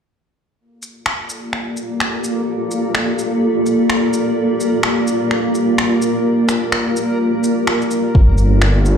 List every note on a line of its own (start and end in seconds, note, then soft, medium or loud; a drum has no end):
0.58 8.11 A#3 medium
0.58 8.17 A#3 medium
0.58 8.11 F4 medium
0.58 8.11 G4 medium
0.58 4.33 A4 medium
0.58 8.11 D5 medium
0.82 shaker medium
1.06 finger snap medium
1.29 shaker medium
1.53 finger snap medium
1.77 shaker soft
2.00 finger snap medium
2.24 shaker medium
2.71 shaker medium
2.95 finger snap loud
3.19 shaker medium
3.66 shaker medium
3.90 finger snap loud
4.13 shaker medium
4.36 8.11 A#4 medium
4.60 shaker medium
4.83 finger snap loud
5.07 shaker medium
5.31 finger snap medium
5.55 shaker medium
5.78 finger snap loud
6.02 shaker medium
6.49 finger snap medium
6.49 shaker medium
6.72 finger snap loud
6.96 shaker medium
7.44 shaker soft
7.67 finger snap medium
7.82 shaker soft
7.91 shaker medium
8.15 8.97 G1 medium
8.15 8.97 A#3 medium
8.15 8.97 F4 medium
8.15 8.97 G4 medium
8.15 8.97 A4 medium
8.15 8.97 D5 medium
8.15 kick loud
8.38 shaker medium
8.62 finger snap loud
8.85 shaker medium